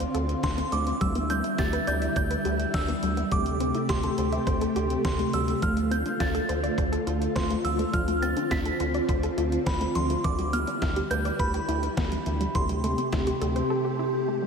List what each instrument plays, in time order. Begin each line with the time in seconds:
Already playing: string machine D3 C4 F4, synth bell C6
0.00 synth arpeggio sound C5, closed hi-hat
0.14 analog synth bass D2, synth arpeggio sound A4, closed hi-hat
0.29 closed hi-hat
0.43 analog synth bass D2, synth arpeggio sound D4, synth bell C6, kick, snare, closed hi-hat
0.58 synth arpeggio sound C4, closed hi-hat
0.72 analog synth bass D2, synth arpeggio sound A3, synth bell D6, closed hi-hat
0.87 synth arpeggio sound C4, closed hi-hat
1.01 analog synth bass D2, string machine D3 G3 E4, synth arpeggio sound G3, synth bell E6, kick, closed hi-hat
1.15 synth arpeggio sound B3, closed hi-hat
1.30 synth arpeggio sound D4, synth bell G6, closed hi-hat
1.44 synth arpeggio sound E4, closed hi-hat
1.58 analog synth bass D2, synth arpeggio sound G4, synth bell A6, kick, snare, closed hi-hat
1.73 synth arpeggio sound B4, closed hi-hat
1.87 analog synth bass D2, synth arpeggio sound D5, synth bell G6, closed hi-hat
2.02 synth arpeggio sound E5, closed hi-hat
2.16 analog synth bass D2, synth arpeggio sound D5, synth bell G6, kick, closed hi-hat
2.31 synth arpeggio sound B4, closed hi-hat
2.45 analog synth bass D2, synth arpeggio sound G4, closed hi-hat
2.60 closed hi-hat
2.74 analog synth bass D2, synth arpeggio sound D4, synth bell E6, kick, snare, closed hi-hat
2.88 synth arpeggio sound B3, closed hi-hat
3.03 analog synth bass D2, synth arpeggio sound G3, closed hi-hat
3.17 synth arpeggio sound B3, closed hi-hat
3.32 analog synth bass D2, string machine C3 A3 G4, synth arpeggio sound G3, synth bell D6, kick, closed hi-hat
3.46 synth arpeggio sound A3, closed hi-hat
3.60 synth arpeggio sound C4, closed hi-hat
3.75 synth arpeggio sound E4, closed hi-hat
3.89 analog synth bass D2, synth arpeggio sound G4, synth bell C6, kick, snare, closed hi-hat
4.03 synth arpeggio sound A4, closed hi-hat
4.18 analog synth bass D2, synth arpeggio sound C5, closed hi-hat
4.32 synth arpeggio sound E5, closed hi-hat
4.47 analog synth bass D2, synth arpeggio sound C5, kick, closed hi-hat
4.61 synth arpeggio sound A4, closed hi-hat
4.76 analog synth bass D2, synth arpeggio sound G4, closed hi-hat
4.90 closed hi-hat
5.05 analog synth bass D2, synth arpeggio sound C4, synth bell C6, kick, snare, closed hi-hat
5.19 synth arpeggio sound A3, closed hi-hat
5.33 analog synth bass D2, synth arpeggio sound G3, synth bell E6, closed hi-hat
5.48 synth arpeggio sound A3, closed hi-hat
5.62 analog synth bass D2, string machine D3 F4, synth arpeggio sound F3, synth bell F6, kick, closed hi-hat
5.77 synth arpeggio sound A3, closed hi-hat
5.91 synth arpeggio sound C4, synth bell G6, closed hi-hat
6.06 synth arpeggio sound D4, closed hi-hat
6.20 analog synth bass D2, synth arpeggio sound F4, synth bell A6, kick, snare, closed hi-hat
6.35 synth arpeggio sound A4, closed hi-hat
6.49 analog synth bass D2, synth arpeggio sound C5, closed hi-hat
6.63 synth arpeggio sound D5, closed hi-hat
6.78 analog synth bass D2, synth arpeggio sound C5, kick, closed hi-hat
6.92 synth arpeggio sound A4, closed hi-hat
7.07 analog synth bass D2, synth arpeggio sound F4, closed hi-hat
7.22 closed hi-hat
7.36 analog synth bass D2, synth arpeggio sound C4, synth bell C6, kick, snare, closed hi-hat
7.50 synth arpeggio sound A3, closed hi-hat
7.65 analog synth bass D2, synth arpeggio sound F3, synth bell E6, closed hi-hat
7.79 synth arpeggio sound A3, closed hi-hat
7.93 analog synth bass D2, synth arpeggio sound F3, string machine C4, synth bell F6, kick, closed hi-hat
8.08 synth arpeggio sound A3, closed hi-hat
8.22 synth arpeggio sound C4, synth bell A6, closed hi-hat
8.37 synth arpeggio sound D4, closed hi-hat
8.51 analog synth bass D2, synth arpeggio sound F4, synth bell B6, kick, snare, closed hi-hat
8.66 synth arpeggio sound A4, closed hi-hat
8.80 analog synth bass D2, synth arpeggio sound C5, closed hi-hat
8.94 synth arpeggio sound D5, closed hi-hat
9.09 analog synth bass D2, synth arpeggio sound C5, kick, closed hi-hat
9.23 synth arpeggio sound A4, closed hi-hat
9.38 analog synth bass D2, synth arpeggio sound F4, closed hi-hat
9.52 closed hi-hat
9.66 analog synth bass D2, synth arpeggio sound C4, synth bell B5, kick, snare, closed hi-hat
9.81 synth arpeggio sound A3, closed hi-hat
9.95 analog synth bass D2, synth arpeggio sound F3, synth bell C6, closed hi-hat
10.10 synth arpeggio sound A3, closed hi-hat
10.24 analog synth bass D2, synth arpeggio sound E3, string machine G3 E4, synth bell D6, kick, closed hi-hat
10.39 synth arpeggio sound G3, closed hi-hat
10.53 synth arpeggio sound B3, synth bell F6, closed hi-hat
10.67 synth arpeggio sound D4, closed hi-hat
10.82 analog synth bass D2, synth arpeggio sound E4, kick, snare, closed hi-hat
10.96 synth arpeggio sound G4, closed hi-hat
11.11 analog synth bass D2, synth arpeggio sound B4, synth bell G6, closed hi-hat
11.25 synth arpeggio sound D5, closed hi-hat
11.39 analog synth bass D2, synth arpeggio sound B4, synth bell B5, kick, closed hi-hat
11.54 synth arpeggio sound G4, closed hi-hat
11.68 analog synth bass D2, synth arpeggio sound E4, closed hi-hat
11.83 closed hi-hat
11.97 analog synth bass D2, synth arpeggio sound B3, kick, snare, closed hi-hat
12.12 synth arpeggio sound G3, closed hi-hat
12.26 analog synth bass D2, synth arpeggio sound E3, closed hi-hat
12.41 synth arpeggio sound G3, closed hi-hat
12.55 analog synth bass D2, string machine C3 A3 G4, synth arpeggio sound E3, synth bell C6, kick, closed hi-hat
12.69 synth arpeggio sound G3, closed hi-hat
12.84 synth arpeggio sound A3, closed hi-hat
12.98 synth arpeggio sound C4, closed hi-hat
13.13 analog synth bass D2, synth arpeggio sound E4, kick, snare, closed hi-hat
13.27 synth arpeggio sound G4, closed hi-hat
13.41 analog synth bass D2, synth arpeggio sound A4, closed hi-hat
13.56 synth arpeggio sound C5, closed hi-hat
13.70 synth arpeggio sound A4
13.85 synth arpeggio sound G4
13.99 synth arpeggio sound E4
14.28 synth arpeggio sound A3
14.42 synth arpeggio sound G3